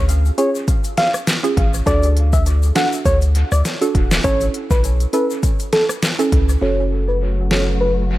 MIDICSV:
0, 0, Header, 1, 6, 480
1, 0, Start_track
1, 0, Key_signature, 3, "minor"
1, 0, Tempo, 594059
1, 1508, Time_signature, 4, 2, 24, 8
1, 6612, End_track
2, 0, Start_track
2, 0, Title_t, "Soft synth lead"
2, 0, Program_c, 0, 80
2, 307, Note_on_c, 0, 73, 84
2, 405, Note_off_c, 0, 73, 0
2, 789, Note_on_c, 0, 77, 81
2, 886, Note_off_c, 0, 77, 0
2, 1509, Note_on_c, 0, 74, 103
2, 1683, Note_off_c, 0, 74, 0
2, 1885, Note_on_c, 0, 76, 88
2, 1960, Note_off_c, 0, 76, 0
2, 2230, Note_on_c, 0, 78, 90
2, 2327, Note_off_c, 0, 78, 0
2, 2469, Note_on_c, 0, 73, 81
2, 2566, Note_off_c, 0, 73, 0
2, 2842, Note_on_c, 0, 74, 83
2, 2919, Note_off_c, 0, 74, 0
2, 3428, Note_on_c, 0, 73, 106
2, 3602, Note_off_c, 0, 73, 0
2, 3803, Note_on_c, 0, 71, 81
2, 3879, Note_off_c, 0, 71, 0
2, 4148, Note_on_c, 0, 71, 77
2, 4246, Note_off_c, 0, 71, 0
2, 4628, Note_on_c, 0, 69, 79
2, 4725, Note_off_c, 0, 69, 0
2, 5350, Note_on_c, 0, 73, 95
2, 5523, Note_off_c, 0, 73, 0
2, 5724, Note_on_c, 0, 71, 74
2, 5800, Note_off_c, 0, 71, 0
2, 6069, Note_on_c, 0, 73, 78
2, 6166, Note_off_c, 0, 73, 0
2, 6308, Note_on_c, 0, 71, 83
2, 6406, Note_off_c, 0, 71, 0
2, 6612, End_track
3, 0, Start_track
3, 0, Title_t, "Synth pluck"
3, 0, Program_c, 1, 84
3, 0, Note_on_c, 1, 61, 97
3, 0, Note_on_c, 1, 65, 87
3, 0, Note_on_c, 1, 68, 108
3, 255, Note_off_c, 1, 61, 0
3, 256, Note_off_c, 1, 65, 0
3, 257, Note_off_c, 1, 68, 0
3, 305, Note_on_c, 1, 61, 74
3, 307, Note_on_c, 1, 65, 71
3, 310, Note_on_c, 1, 68, 87
3, 529, Note_off_c, 1, 61, 0
3, 531, Note_off_c, 1, 65, 0
3, 532, Note_off_c, 1, 68, 0
3, 1158, Note_on_c, 1, 61, 75
3, 1160, Note_on_c, 1, 65, 70
3, 1162, Note_on_c, 1, 68, 84
3, 1307, Note_off_c, 1, 61, 0
3, 1308, Note_off_c, 1, 65, 0
3, 1309, Note_off_c, 1, 68, 0
3, 1504, Note_on_c, 1, 62, 100
3, 1507, Note_on_c, 1, 66, 89
3, 1509, Note_on_c, 1, 69, 104
3, 2175, Note_off_c, 1, 62, 0
3, 2177, Note_off_c, 1, 66, 0
3, 2178, Note_off_c, 1, 69, 0
3, 2224, Note_on_c, 1, 62, 76
3, 2226, Note_on_c, 1, 66, 71
3, 2230, Note_on_c, 1, 69, 87
3, 2449, Note_off_c, 1, 62, 0
3, 2450, Note_off_c, 1, 66, 0
3, 2452, Note_off_c, 1, 69, 0
3, 3080, Note_on_c, 1, 62, 72
3, 3083, Note_on_c, 1, 66, 72
3, 3084, Note_on_c, 1, 69, 84
3, 3228, Note_off_c, 1, 62, 0
3, 3230, Note_off_c, 1, 66, 0
3, 3230, Note_off_c, 1, 69, 0
3, 3426, Note_on_c, 1, 61, 93
3, 3428, Note_on_c, 1, 64, 88
3, 3430, Note_on_c, 1, 69, 107
3, 4096, Note_off_c, 1, 61, 0
3, 4097, Note_off_c, 1, 64, 0
3, 4098, Note_off_c, 1, 69, 0
3, 4145, Note_on_c, 1, 61, 74
3, 4148, Note_on_c, 1, 64, 67
3, 4151, Note_on_c, 1, 69, 84
3, 4370, Note_off_c, 1, 61, 0
3, 4371, Note_off_c, 1, 64, 0
3, 4372, Note_off_c, 1, 69, 0
3, 5000, Note_on_c, 1, 61, 79
3, 5002, Note_on_c, 1, 64, 69
3, 5005, Note_on_c, 1, 69, 83
3, 5148, Note_off_c, 1, 61, 0
3, 5149, Note_off_c, 1, 64, 0
3, 5151, Note_off_c, 1, 69, 0
3, 5344, Note_on_c, 1, 61, 89
3, 5346, Note_on_c, 1, 66, 84
3, 5349, Note_on_c, 1, 69, 101
3, 6015, Note_off_c, 1, 61, 0
3, 6016, Note_off_c, 1, 66, 0
3, 6018, Note_off_c, 1, 69, 0
3, 6065, Note_on_c, 1, 61, 74
3, 6068, Note_on_c, 1, 66, 68
3, 6070, Note_on_c, 1, 69, 81
3, 6289, Note_off_c, 1, 61, 0
3, 6291, Note_off_c, 1, 66, 0
3, 6292, Note_off_c, 1, 69, 0
3, 6612, End_track
4, 0, Start_track
4, 0, Title_t, "String section"
4, 0, Program_c, 2, 48
4, 5346, Note_on_c, 2, 57, 68
4, 5347, Note_on_c, 2, 49, 74
4, 5347, Note_on_c, 2, 66, 86
4, 5348, Note_on_c, 2, 54, 70
4, 6612, Note_off_c, 2, 49, 0
4, 6612, Note_off_c, 2, 54, 0
4, 6612, Note_off_c, 2, 57, 0
4, 6612, Note_off_c, 2, 66, 0
4, 6612, End_track
5, 0, Start_track
5, 0, Title_t, "Sub bass"
5, 0, Program_c, 3, 38
5, 0, Note_on_c, 3, 38, 99
5, 250, Note_off_c, 3, 38, 0
5, 1270, Note_on_c, 3, 33, 92
5, 1469, Note_off_c, 3, 33, 0
5, 1508, Note_on_c, 3, 38, 101
5, 2196, Note_off_c, 3, 38, 0
5, 2469, Note_on_c, 3, 38, 97
5, 2780, Note_off_c, 3, 38, 0
5, 2844, Note_on_c, 3, 38, 102
5, 2931, Note_off_c, 3, 38, 0
5, 3190, Note_on_c, 3, 28, 102
5, 3389, Note_off_c, 3, 28, 0
5, 3428, Note_on_c, 3, 33, 102
5, 3628, Note_off_c, 3, 33, 0
5, 3802, Note_on_c, 3, 35, 93
5, 4090, Note_off_c, 3, 35, 0
5, 5110, Note_on_c, 3, 37, 88
5, 5309, Note_off_c, 3, 37, 0
5, 5348, Note_on_c, 3, 30, 83
5, 6612, Note_off_c, 3, 30, 0
5, 6612, End_track
6, 0, Start_track
6, 0, Title_t, "Drums"
6, 71, Note_on_c, 9, 42, 77
6, 73, Note_on_c, 9, 82, 76
6, 152, Note_off_c, 9, 42, 0
6, 154, Note_off_c, 9, 82, 0
6, 205, Note_on_c, 9, 82, 52
6, 285, Note_off_c, 9, 82, 0
6, 307, Note_on_c, 9, 42, 74
6, 310, Note_on_c, 9, 82, 50
6, 388, Note_off_c, 9, 42, 0
6, 390, Note_off_c, 9, 82, 0
6, 445, Note_on_c, 9, 82, 70
6, 526, Note_off_c, 9, 82, 0
6, 548, Note_on_c, 9, 36, 94
6, 548, Note_on_c, 9, 82, 64
6, 549, Note_on_c, 9, 42, 76
6, 628, Note_off_c, 9, 82, 0
6, 629, Note_off_c, 9, 36, 0
6, 630, Note_off_c, 9, 42, 0
6, 678, Note_on_c, 9, 82, 45
6, 683, Note_on_c, 9, 42, 63
6, 759, Note_off_c, 9, 82, 0
6, 763, Note_off_c, 9, 42, 0
6, 787, Note_on_c, 9, 42, 83
6, 789, Note_on_c, 9, 38, 74
6, 868, Note_off_c, 9, 42, 0
6, 870, Note_off_c, 9, 38, 0
6, 922, Note_on_c, 9, 82, 79
6, 923, Note_on_c, 9, 37, 89
6, 1003, Note_off_c, 9, 82, 0
6, 1004, Note_off_c, 9, 37, 0
6, 1028, Note_on_c, 9, 42, 89
6, 1029, Note_on_c, 9, 38, 100
6, 1030, Note_on_c, 9, 82, 84
6, 1038, Note_on_c, 9, 39, 85
6, 1109, Note_off_c, 9, 42, 0
6, 1110, Note_off_c, 9, 38, 0
6, 1111, Note_off_c, 9, 82, 0
6, 1118, Note_off_c, 9, 39, 0
6, 1163, Note_on_c, 9, 42, 51
6, 1164, Note_on_c, 9, 82, 52
6, 1244, Note_off_c, 9, 42, 0
6, 1245, Note_off_c, 9, 82, 0
6, 1270, Note_on_c, 9, 36, 95
6, 1271, Note_on_c, 9, 42, 76
6, 1351, Note_off_c, 9, 36, 0
6, 1351, Note_off_c, 9, 42, 0
6, 1403, Note_on_c, 9, 82, 75
6, 1484, Note_off_c, 9, 82, 0
6, 1508, Note_on_c, 9, 36, 114
6, 1509, Note_on_c, 9, 42, 85
6, 1509, Note_on_c, 9, 82, 74
6, 1589, Note_off_c, 9, 36, 0
6, 1589, Note_off_c, 9, 42, 0
6, 1590, Note_off_c, 9, 82, 0
6, 1637, Note_on_c, 9, 82, 52
6, 1644, Note_on_c, 9, 42, 61
6, 1718, Note_off_c, 9, 82, 0
6, 1724, Note_off_c, 9, 42, 0
6, 1750, Note_on_c, 9, 42, 77
6, 1831, Note_off_c, 9, 42, 0
6, 1881, Note_on_c, 9, 82, 81
6, 1883, Note_on_c, 9, 36, 87
6, 1962, Note_off_c, 9, 82, 0
6, 1964, Note_off_c, 9, 36, 0
6, 1989, Note_on_c, 9, 82, 76
6, 1990, Note_on_c, 9, 42, 80
6, 2070, Note_off_c, 9, 82, 0
6, 2071, Note_off_c, 9, 42, 0
6, 2121, Note_on_c, 9, 82, 51
6, 2202, Note_off_c, 9, 82, 0
6, 2226, Note_on_c, 9, 42, 78
6, 2228, Note_on_c, 9, 38, 119
6, 2228, Note_on_c, 9, 82, 50
6, 2237, Note_on_c, 9, 39, 96
6, 2307, Note_off_c, 9, 42, 0
6, 2309, Note_off_c, 9, 38, 0
6, 2309, Note_off_c, 9, 82, 0
6, 2317, Note_off_c, 9, 39, 0
6, 2364, Note_on_c, 9, 82, 67
6, 2445, Note_off_c, 9, 82, 0
6, 2468, Note_on_c, 9, 36, 101
6, 2468, Note_on_c, 9, 82, 64
6, 2469, Note_on_c, 9, 42, 70
6, 2548, Note_off_c, 9, 82, 0
6, 2549, Note_off_c, 9, 36, 0
6, 2550, Note_off_c, 9, 42, 0
6, 2597, Note_on_c, 9, 82, 42
6, 2603, Note_on_c, 9, 42, 60
6, 2678, Note_off_c, 9, 82, 0
6, 2684, Note_off_c, 9, 42, 0
6, 2707, Note_on_c, 9, 42, 78
6, 2787, Note_off_c, 9, 42, 0
6, 2842, Note_on_c, 9, 82, 79
6, 2843, Note_on_c, 9, 37, 89
6, 2923, Note_off_c, 9, 82, 0
6, 2924, Note_off_c, 9, 37, 0
6, 2949, Note_on_c, 9, 82, 88
6, 2950, Note_on_c, 9, 42, 90
6, 2951, Note_on_c, 9, 38, 61
6, 3030, Note_off_c, 9, 42, 0
6, 3030, Note_off_c, 9, 82, 0
6, 3031, Note_off_c, 9, 38, 0
6, 3083, Note_on_c, 9, 42, 51
6, 3086, Note_on_c, 9, 82, 54
6, 3164, Note_off_c, 9, 42, 0
6, 3166, Note_off_c, 9, 82, 0
6, 3190, Note_on_c, 9, 36, 91
6, 3190, Note_on_c, 9, 42, 80
6, 3271, Note_off_c, 9, 36, 0
6, 3271, Note_off_c, 9, 42, 0
6, 3323, Note_on_c, 9, 82, 78
6, 3324, Note_on_c, 9, 38, 116
6, 3332, Note_on_c, 9, 39, 93
6, 3404, Note_off_c, 9, 82, 0
6, 3405, Note_off_c, 9, 38, 0
6, 3413, Note_off_c, 9, 39, 0
6, 3428, Note_on_c, 9, 36, 109
6, 3428, Note_on_c, 9, 42, 82
6, 3429, Note_on_c, 9, 82, 75
6, 3508, Note_off_c, 9, 42, 0
6, 3509, Note_off_c, 9, 36, 0
6, 3510, Note_off_c, 9, 82, 0
6, 3559, Note_on_c, 9, 82, 51
6, 3563, Note_on_c, 9, 42, 60
6, 3640, Note_off_c, 9, 82, 0
6, 3644, Note_off_c, 9, 42, 0
6, 3670, Note_on_c, 9, 42, 81
6, 3750, Note_off_c, 9, 42, 0
6, 3803, Note_on_c, 9, 36, 90
6, 3803, Note_on_c, 9, 82, 85
6, 3884, Note_off_c, 9, 36, 0
6, 3884, Note_off_c, 9, 82, 0
6, 3910, Note_on_c, 9, 42, 76
6, 3912, Note_on_c, 9, 82, 74
6, 3991, Note_off_c, 9, 42, 0
6, 3993, Note_off_c, 9, 82, 0
6, 4043, Note_on_c, 9, 42, 50
6, 4045, Note_on_c, 9, 82, 52
6, 4124, Note_off_c, 9, 42, 0
6, 4126, Note_off_c, 9, 82, 0
6, 4146, Note_on_c, 9, 42, 73
6, 4149, Note_on_c, 9, 82, 51
6, 4227, Note_off_c, 9, 42, 0
6, 4230, Note_off_c, 9, 82, 0
6, 4286, Note_on_c, 9, 82, 71
6, 4367, Note_off_c, 9, 82, 0
6, 4387, Note_on_c, 9, 82, 66
6, 4388, Note_on_c, 9, 36, 94
6, 4389, Note_on_c, 9, 42, 73
6, 4468, Note_off_c, 9, 82, 0
6, 4469, Note_off_c, 9, 36, 0
6, 4470, Note_off_c, 9, 42, 0
6, 4519, Note_on_c, 9, 82, 43
6, 4523, Note_on_c, 9, 42, 64
6, 4600, Note_off_c, 9, 82, 0
6, 4604, Note_off_c, 9, 42, 0
6, 4626, Note_on_c, 9, 42, 83
6, 4628, Note_on_c, 9, 38, 72
6, 4707, Note_off_c, 9, 42, 0
6, 4709, Note_off_c, 9, 38, 0
6, 4762, Note_on_c, 9, 37, 92
6, 4764, Note_on_c, 9, 82, 78
6, 4843, Note_off_c, 9, 37, 0
6, 4845, Note_off_c, 9, 82, 0
6, 4868, Note_on_c, 9, 42, 87
6, 4869, Note_on_c, 9, 38, 105
6, 4870, Note_on_c, 9, 82, 84
6, 4878, Note_on_c, 9, 39, 85
6, 4949, Note_off_c, 9, 42, 0
6, 4950, Note_off_c, 9, 38, 0
6, 4951, Note_off_c, 9, 82, 0
6, 4959, Note_off_c, 9, 39, 0
6, 5003, Note_on_c, 9, 42, 52
6, 5006, Note_on_c, 9, 82, 52
6, 5083, Note_off_c, 9, 42, 0
6, 5087, Note_off_c, 9, 82, 0
6, 5109, Note_on_c, 9, 42, 78
6, 5110, Note_on_c, 9, 36, 90
6, 5190, Note_off_c, 9, 36, 0
6, 5190, Note_off_c, 9, 42, 0
6, 5243, Note_on_c, 9, 82, 77
6, 5324, Note_off_c, 9, 82, 0
6, 6068, Note_on_c, 9, 38, 104
6, 6076, Note_on_c, 9, 39, 89
6, 6148, Note_off_c, 9, 38, 0
6, 6157, Note_off_c, 9, 39, 0
6, 6612, End_track
0, 0, End_of_file